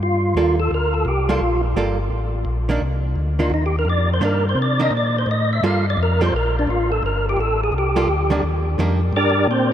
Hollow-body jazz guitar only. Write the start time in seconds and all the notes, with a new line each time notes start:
0.37 G3 A#3 F4 A4
1.29 G3 A#3 F4 A4
1.77 G3 A#3 F4 A4
2.69 D#3 A#3 D4
3.39 D#3 A#3 D4
4.21 D#3 A#3 D4
4.79 D#3 A#3 D4
5.64 G3 A#3 F4 A4
6.21 G3 A#3 F4 A4
7.96 G3 A#3 F4 A4
8.30 D#3 G3 A#3 D4
8.79 D#3 G3 A#3 D4